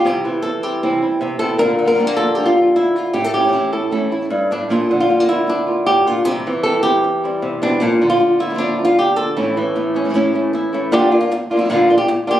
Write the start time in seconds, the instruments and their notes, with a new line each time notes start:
0.04 nylon-string guitar C3 E3 G3 C4 E4 G4
0.24 nylon-string guitar E3 G3 C4 E4
0.42 nylon-string guitar A4, muted nylon-string guitar stroke
0.63 nylon-string guitar G3 C4 E4 G4
0.83 nylon-string guitar C3 E3 G3 C4 E4
1.02 nylon-string guitar G3 C4 E4
1.21 nylon-string guitar C3, muted nylon-string guitar stroke
1.39 nylon-string guitar B2 G3 C4 E4 A4
1.58 nylon-string guitar A#2 D3 A#3 D4 A#4, muted nylon-string guitar stroke
1.79 nylon-string guitar D3
1.85 nylon-string guitar F3 A#3 D4 F4 A#4
1.90 nylon-string guitar F3 A#3 D4 F4
1.94 nylon-string guitar F3 G3 A#3 D4 F4
1.99 nylon-string guitar A#2 F3 A#3 D4 F4
2.07 nylon-string guitar A#3
2.17 nylon-string guitar A#3 D4 F4 A4
2.35 nylon-string guitar A#2 F3 A#3 D4 F4 G4
2.46 nylon-string guitar F4
2.57 nylon-string guitar A#3 D4 F4
2.76 nylon-string guitar E4, muted nylon-string guitar stroke
2.96 nylon-string guitar F4
3.13 nylon-string guitar A2 G4, muted nylon-string guitar stroke
3.24 nylon-string guitar A4
3.34 nylon-string guitar C#4 G4
3.39 nylon-string guitar E3 A3 C#4 E4
3.44 nylon-string guitar E3 A3 C#4 E4
3.48 nylon-string guitar E3 A3 C#4 E4
3.53 nylon-string guitar A2 E3 A3 C#4 E4
3.72 nylon-string guitar A3 C#4 E4 A4
3.91 nylon-string guitar A2 E3 A3 C#4 E4 A4
4.11 nylon-string guitar A3 C#4 E4
4.30 nylon-string guitar G2, muted nylon-string guitar stroke
4.51 nylon-string guitar A2 D4
4.69 nylon-string guitar A#2 F3 A#3 D4 E4 F4
4.89 nylon-string guitar D3 A#3 D4 F4
5.00 nylon-string guitar F4
5.08 nylon-string guitar F3 G3 A#3 D4 F4
5.20 nylon-string guitar A#3
5.27 nylon-string guitar A#3 D4 E4 F4
5.47 nylon-string guitar D4, muted nylon-string guitar stroke
5.67 nylon-string guitar A#3 D4 F4
5.86 nylon-string guitar A2 G4
6.06 nylon-string guitar A#2 A#3 D4 F4
6.25 nylon-string guitar C3 E3 G3 C4 E4 G4
6.45 nylon-string guitar E3 G3 C4 E4
6.63 nylon-string guitar E3 G3 C4 E4 A4
6.83 nylon-string guitar G3 C4 E4 G4
7.04 muted nylon-string guitar stroke
7.23 nylon-string guitar G3 C4 E4
7.42 nylon-string guitar C3
7.62 nylon-string guitar B2 G3 C4 D4 E4
7.80 nylon-string guitar A#2 F3 A#3 D4 E4 F4
8.01 nylon-string guitar D3 A#3 D4 F4
8.10 nylon-string guitar F4
8.20 muted nylon-string guitar stroke
8.39 nylon-string guitar A#3 D4 E4 F4
8.50 nylon-string guitar F3 A#3 D4 F4
8.54 nylon-string guitar F3 A#3 D4 F4
8.59 nylon-string guitar A#2 F3 A#3 D4 F4
8.79 nylon-string guitar A#3 D4 F4
8.85 nylon-string guitar F4
8.98 nylon-string guitar G4, muted nylon-string guitar stroke
9.16 nylon-string guitar A#3 D4 F4 A4
9.36 nylon-string guitar A2 E3 A3 C#4 E4
9.56 nylon-string guitar E3 A3 C#4 E4
9.75 nylon-string guitar A3, muted nylon-string guitar stroke
9.94 nylon-string guitar A3 C#4 E4
10.05 nylon-string guitar E3 A3 C#4 E4
10.09 nylon-string guitar E3 A3 C#4 E4
10.14 nylon-string guitar A2 E3 A3 C#4 E4
10.33 nylon-string guitar A3 C#4 E4
10.53 nylon-string guitar E4, muted nylon-string guitar stroke
10.72 nylon-string guitar A3 C#4 E4
10.92 nylon-string guitar A#2 D3 F3 A#3 D4 F4 G4
11.11 nylon-string guitar A#3 D4 F4
11.21 nylon-string guitar F4
11.30 muted nylon-string guitar stroke
11.50 nylon-string guitar A#3 D4 F4
11.56 nylon-string guitar F3 A#3 D4 E4 F4
11.60 nylon-string guitar F3 A#3 D4 F4
11.65 nylon-string guitar F3 A#3 D4 F4
11.69 nylon-string guitar A#2 D3 F3 A#3 D4 F4
11.88 nylon-string guitar A#3 D4 F4
11.98 nylon-string guitar G4
12.08 muted nylon-string guitar stroke
12.27 nylon-string guitar A#3 D4 F4 G4